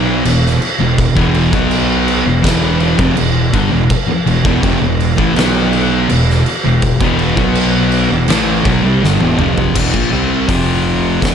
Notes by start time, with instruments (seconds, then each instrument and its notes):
Already playing: fingered electric bass B1, distorted electric guitar B2 F#3 B3
0.24 fingered electric bass E1, distorted electric guitar E2 B2, crash
0.46 snare
0.62 crash
0.79 fingered electric bass E1, distorted electric guitar E2 B2
0.98 kick, crash
1.15 fingered electric bass E1, distorted electric guitar E2 B2 E3, kick
1.34 crash
1.52 fingered electric bass B1, distorted electric guitar B2 F#3 B3, kick
1.71 crash
2.08 crash
2.25 fingered electric bass E1, distorted electric guitar E2 B2
2.43 fingered electric bass E1, distorted electric guitar E2 B2 E3, kick, crash
2.47 snare
2.80 crash
2.97 fingered electric bass F1, distorted electric guitar F2 C3, kick
3.15 fingered electric bass E1, distorted electric guitar E2 B2, crash
3.53 fingered electric bass G1, distorted electric guitar G2 D3, kick, crash
3.71 fingered electric bass E1, distorted electric guitar E2 B2
3.90 kick, crash
4.07 muted distorted electric guitar stroke, muted fingered electric bass stroke
4.26 fingered electric bass E1, distorted electric guitar E2 B2, crash
4.44 fingered electric bass E1, distorted electric guitar E2 B2, kick
4.62 fingered electric bass F1, distorted electric guitar F2 C3, kick, crash
4.81 fingered electric bass E1, distorted electric guitar E2 B2
5.00 crash
5.17 fingered electric bass A1, distorted electric guitar A2 E3, kick
5.36 fingered electric bass B1, distorted electric guitar B2 F#3 B3, snare, crash
5.73 crash
6.09 fingered electric bass E1, distorted electric guitar E2 B2, crash
6.30 snare
6.46 crash
6.65 fingered electric bass E1, distorted electric guitar E2 B2
6.82 kick, crash
7.01 fingered electric bass E1, distorted electric guitar E2 B2 E3, kick
7.19 crash
7.37 fingered electric bass B1, distorted electric guitar B2 F#3 B3, kick
7.55 crash
7.92 crash
8.10 fingered electric bass E1, distorted electric guitar E2 B2
8.28 fingered electric bass A1, distorted electric guitar A2 E3 A3, snare, crash
8.65 fingered electric bass B1, distorted electric guitar B2 F#3, kick, crash
8.83 fingered electric bass C2, distorted electric guitar C3 G3
9.01 fingered electric bass G1, distorted electric guitar G2 D3, snare
9.20 fingered electric bass E1, distorted electric guitar E2 B2, high tom
9.39 fingered electric bass F1, distorted electric guitar F2 C3 F3, mid tom
9.58 floor tom
9.75 fingered electric bass E1, distorted electric guitar E2 B2, kick, crash
9.94 fingered electric bass A#1, distorted electric guitar A#2 F3, kick
10.12 fingered electric bass C2, distorted electric guitar C3 G3 C4
10.48 fingered electric bass F1, distorted electric guitar F2 C3 F3, kick, open hi-hat
11.22 fingered electric bass E1, distorted electric guitar E2 B2, kick, snare, open hi-hat